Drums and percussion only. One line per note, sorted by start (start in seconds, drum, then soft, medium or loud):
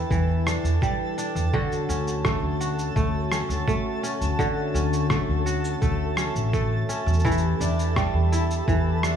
0.11 kick loud
0.11 cabasa soft
0.47 cross-stick medium
0.47 cabasa medium
0.65 cabasa soft
0.82 kick loud
0.82 cabasa soft
1.19 cabasa medium
1.37 cabasa soft
1.53 kick medium
1.72 cabasa soft
1.90 cabasa medium
2.08 cabasa soft
2.25 kick loud
2.25 cross-stick medium
2.25 cabasa soft
2.61 cabasa medium
2.79 cabasa soft
2.96 kick loud
2.96 cabasa soft
3.32 cross-stick medium
3.32 cabasa medium
3.50 cabasa soft
3.68 kick loud
3.68 cabasa soft
4.04 cabasa medium
4.22 cabasa soft
4.39 kick medium
4.39 cabasa soft
4.76 cabasa medium
4.93 cabasa soft
5.10 kick medium
5.10 cross-stick medium
5.10 cabasa soft
5.47 cabasa medium
5.65 cabasa soft
5.82 kick loud
5.82 cabasa soft
6.17 cross-stick medium
6.17 cabasa medium
6.36 cabasa soft
6.53 kick loud
6.53 cabasa soft
6.90 cabasa medium
7.08 cabasa soft
7.13 cabasa soft
7.19 cabasa soft
7.25 kick medium
7.25 cabasa soft
7.31 cabasa soft
7.38 cabasa soft
7.61 cabasa medium
7.79 cabasa soft
7.96 kick loud
7.96 cross-stick medium
7.96 cabasa soft
8.33 cabasa medium
8.51 cabasa soft
8.68 kick loud
8.68 cabasa soft
9.03 cross-stick medium
9.03 cabasa medium